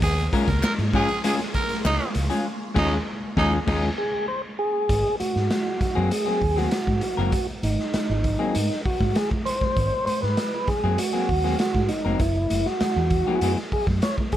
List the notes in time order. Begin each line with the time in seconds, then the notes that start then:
0.02 D#2 G#3 A#3 C#4 F4 G#4, kick, closed hi-hat
0.17 closed hi-hat, muted conga
0.32 G#3 C#4 F4 A#4, kick, closed hi-hat, high conga
0.48 C#2 A#4, kick, snare, closed hi-hat
0.63 A#4, muted fingered electric bass stroke, snare, clap
0.78 G#2, closed hi-hat, muted conga
0.93 G#3 C#4 F4 G#4, kick, snare, open hi-hat, low conga
1.09 closed hi-hat
1.24 G#3 C#4 F4 G#4, closed hi-hat, high conga
1.39 snare, closed hi-hat, muted conga
1.54 A#4, kick, closed hi-hat
1.69 snare, closed hi-hat, high conga
1.85 C#2 D#4, snare, clap
1.99 closed hi-hat, high conga
2.15 C#2, closed hi-hat, low conga
2.30 G#3 C#4 F4 G#4, closed hi-hat, high conga
2.74 D#2 G#3 C#4 D#4 F4 G#4, kick, snare, crash
3.37 D#2 G#3 C#4 D#4 F4 G#4, kick, snare
3.67 D#2 G#3 C#4 D#4 F4 G#4, kick, snare, crash
3.98 G#4
4.28 C5
4.59 G#4
4.89 G#1, kick, closed hi-hat
5.05 muted conga
5.20 F#4, muted fingered electric bass stroke, closed hi-hat, high conga
5.36 G#2, snare
5.50 snare, closed hi-hat, muted conga, high conga
5.65 muted conga
5.81 F#4, muted fingered electric bass stroke, kick, snare, closed hi-hat, low conga
5.95 F#2 F#3 A#3 C4 G#4
6.11 G#4, closed hi-hat, muted conga, high conga
6.26 F#3 A#3 C4 G#4, snare
6.41 D#2, kick, open hi-hat
6.56 F#3 A#3 C4 F#4 G#4, snare, high conga
6.71 snare, closed hi-hat
6.87 G#2, kick, snare, muted conga, high conga
7.01 F#4, closed hi-hat, low conga
7.17 F#1 F#3 A#3 C4 A#4, high conga
7.32 F#4, kick, closed hi-hat
7.48 muted conga
7.63 G#1 D#4, closed hi-hat, high conga
7.79 snare
7.93 muted fingered electric bass stroke, snare, closed hi-hat, muted conga, high conga
8.09 G#1, muted conga
8.24 kick, closed hi-hat, low conga
8.39 F#3 A#3 C4 G#4
8.54 G#2, closed hi-hat, high conga
8.70 snare
8.85 F#4, muted fingered electric bass stroke, kick, open hi-hat
9.01 G#2, kick, snare, high conga
9.15 G#4, snare, closed hi-hat, muted conga
9.31 kick, muted conga, high conga
9.45 C5, closed hi-hat, low conga
9.61 kick, snare, high conga
9.76 G#1, kick, closed hi-hat, muted conga
9.92 muted conga
10.06 C5, muted fingered electric bass stroke, closed hi-hat, high conga
10.22 G#2 B4, snare
10.37 snare, closed hi-hat, high conga
10.52 muted conga
10.68 G#4, muted fingered electric bass stroke, kick, snare, closed hi-hat, low conga
10.84 F#2 F#3 A#3 C4 G#4
10.98 F#4, closed hi-hat, muted conga, high conga
11.13 F#3 A#3 C4 G#4, snare
11.29 D#2, kick, open hi-hat
11.44 F#3 A#3 C4 G#4, snare, high conga
11.59 F#4, snare, closed hi-hat
11.74 G#2, kick, snare, muted conga, high conga
11.89 D#4, closed hi-hat, low conga
12.04 F1 F#3 A#3 C4 A#4, high conga
12.19 F#1 E4, kick, closed hi-hat, muted conga
12.36 muted conga
12.50 F#1, closed hi-hat, high conga
12.66 F#4, snare
12.80 muted fingered electric bass stroke, snare, closed hi-hat, muted conga, high conga
12.96 E2, muted conga
13.10 kick, closed hi-hat, low conga
13.27 F#3 B3 E4 G#4
13.41 F#2 F#3 B3 E4 G#4, closed hi-hat, high conga
13.57 snare, muted conga
13.72 G#4, muted fingered electric bass stroke, kick, open hi-hat
13.87 F#2, kick, snare, high conga
14.02 C#5, snare, closed hi-hat
14.18 kick, high conga
14.32 G#4, kick, closed hi-hat, low conga